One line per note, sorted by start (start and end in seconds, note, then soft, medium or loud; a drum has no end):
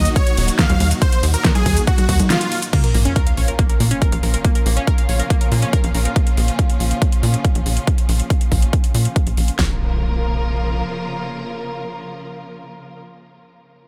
0.00 2.69 A#2 medium
0.00 2.69 D#3 medium
0.00 2.69 F#3 medium
0.00 2.69 D#4 medium
0.00 2.69 F#4 medium
0.05 closed hi-hat medium
0.05 shaker medium
0.16 0.44 C#5 loud
0.16 kick loud
0.16 closed hi-hat medium
0.16 shaker medium
0.27 closed hi-hat medium
0.27 shaker soft
0.37 0.51 D#1 medium
0.37 open hi-hat loud
0.37 ride medium
0.48 closed hi-hat medium
0.48 shaker medium
0.59 0.87 F5 loud
0.59 kick loud
0.59 snare loud
0.59 closed hi-hat medium
0.59 shaker medium
0.70 0.76 D#2 loud
0.70 closed hi-hat medium
0.70 high conga medium
0.70 shaker soft
0.80 0.93 D#2 medium
0.80 open hi-hat medium
0.80 ride medium
0.91 closed hi-hat medium
0.91 shaker medium
1.02 1.22 C5 loud
1.02 kick loud
1.02 closed hi-hat medium
1.02 shaker medium
1.12 closed hi-hat medium
1.12 shaker soft
1.23 1.36 D#2 loud
1.23 open hi-hat loud
1.23 ride medium
1.34 1.48 A#4 medium
1.34 closed hi-hat medium
1.34 shaker medium
1.45 kick loud
1.45 snare loud
1.45 closed hi-hat medium
1.45 shaker medium
1.55 1.76 G#4 loud
1.55 closed hi-hat medium
1.55 high conga medium
1.55 shaker soft
1.66 1.79 D#2 medium
1.66 kick medium
1.66 open hi-hat medium
1.66 ride medium
1.77 closed hi-hat medium
1.77 shaker medium
1.87 2.15 F#4 loud
1.87 kick loud
1.87 closed hi-hat medium
1.87 shaker medium
1.98 closed hi-hat medium
1.98 high conga medium
1.98 shaker soft
2.09 2.22 D#2 loud
2.09 kick medium
2.09 open hi-hat loud
2.09 ride medium
2.20 closed hi-hat medium
2.20 high conga medium
2.20 shaker medium
2.30 2.58 F4 loud
2.30 snare loud
2.30 closed hi-hat medium
2.30 shaker medium
2.41 closed hi-hat medium
2.41 shaker soft
2.52 open hi-hat medium
2.52 ride medium
2.62 closed hi-hat medium
2.62 shaker medium
2.73 9.55 A#2 medium
2.73 9.55 C#3 medium
2.73 9.55 F3 medium
2.73 2.79 A#3 loud
2.73 9.55 C#4 medium
2.73 9.55 F4 medium
2.73 kick loud
2.73 closed hi-hat medium
2.73 crash medium
2.73 sub drop medium
2.84 2.93 A#4 medium
2.84 closed hi-hat medium
2.94 3.08 A#1 loud
2.94 2.98 A#3 medium
2.94 open hi-hat loud
3.05 3.15 C#4 loud
3.05 closed hi-hat medium
3.16 3.22 A#4 loud
3.16 kick loud
3.16 closed hi-hat medium
3.27 3.33 F5 medium
3.27 closed hi-hat medium
3.37 3.51 A#1 medium
3.37 3.44 C#5 medium
3.37 open hi-hat medium
3.48 3.52 A#4 medium
3.48 closed hi-hat medium
3.59 3.63 A#3 loud
3.59 kick loud
3.59 closed hi-hat medium
3.70 3.79 A#4 medium
3.70 closed hi-hat medium
3.80 3.93 A#2 medium
3.80 3.84 A#3 medium
3.80 open hi-hat loud
3.91 4.01 C#4 loud
3.91 closed hi-hat medium
4.02 4.08 A#4 loud
4.02 kick loud
4.02 closed hi-hat medium
4.12 4.19 A#1 loud
4.12 4.19 F5 medium
4.12 closed hi-hat medium
4.23 4.36 A#1 medium
4.23 4.30 A#4 medium
4.23 open hi-hat medium
4.34 4.38 A#4 medium
4.34 closed hi-hat medium
4.45 4.51 A#3 medium
4.45 kick loud
4.45 closed hi-hat medium
4.55 4.65 A#4 medium
4.55 closed hi-hat medium
4.66 4.79 A#1 loud
4.66 4.70 A#3 medium
4.66 open hi-hat loud
4.77 4.86 C#4 loud
4.77 closed hi-hat medium
4.87 4.94 A#4 loud
4.87 kick loud
4.87 closed hi-hat medium
4.98 5.05 F5 medium
4.98 closed hi-hat medium
5.09 5.22 A#1 medium
5.09 5.15 C#5 medium
5.09 open hi-hat medium
5.20 5.23 A#4 medium
5.20 closed hi-hat medium
5.30 5.34 A#3 loud
5.30 kick loud
5.30 closed hi-hat medium
5.41 5.51 A#4 medium
5.41 closed hi-hat medium
5.52 5.65 A#2 medium
5.52 5.56 A#3 medium
5.52 open hi-hat loud
5.62 5.72 C#4 loud
5.62 closed hi-hat medium
5.73 5.80 A#4 loud
5.73 kick loud
5.73 closed hi-hat medium
5.84 5.90 A#1 loud
5.84 5.90 F5 medium
5.84 closed hi-hat medium
5.95 6.08 A#1 medium
5.95 6.01 A#4 medium
5.95 open hi-hat medium
6.05 6.09 A#4 medium
6.05 closed hi-hat medium
6.16 kick loud
6.16 closed hi-hat medium
6.27 closed hi-hat medium
6.37 6.51 A#1 loud
6.37 open hi-hat loud
6.48 closed hi-hat medium
6.59 kick loud
6.59 closed hi-hat medium
6.70 closed hi-hat medium
6.80 6.93 A#1 medium
6.80 open hi-hat medium
6.91 closed hi-hat medium
7.02 kick loud
7.02 closed hi-hat medium
7.12 closed hi-hat medium
7.23 7.36 A#2 medium
7.23 open hi-hat loud
7.34 closed hi-hat medium
7.45 kick loud
7.45 closed hi-hat medium
7.55 7.62 A#1 medium
7.55 closed hi-hat medium
7.66 7.79 A#1 medium
7.66 open hi-hat medium
7.77 closed hi-hat medium
7.87 kick loud
7.87 closed hi-hat medium
7.98 closed hi-hat medium
8.09 8.22 A#1 loud
8.09 open hi-hat loud
8.20 closed hi-hat medium
8.30 kick loud
8.30 closed hi-hat medium
8.41 closed hi-hat medium
8.52 8.65 A#1 medium
8.52 kick medium
8.52 open hi-hat medium
8.62 closed hi-hat medium
8.73 kick loud
8.73 closed hi-hat medium
8.84 closed hi-hat medium
8.95 9.08 A#2 medium
8.95 open hi-hat loud
9.05 closed hi-hat medium
9.16 kick loud
9.16 closed hi-hat medium
9.27 9.33 A#1 medium
9.27 closed hi-hat medium
9.37 9.51 A#1 medium
9.37 open hi-hat medium
9.48 closed hi-hat medium
9.59 10.83 A#1 medium
9.59 13.00 C#3 medium
9.59 13.00 F3 medium
9.59 13.00 A#3 medium
9.59 13.00 F4 medium
9.59 13.00 A#4 medium
9.59 kick loud
9.59 snare loud
9.59 impact medium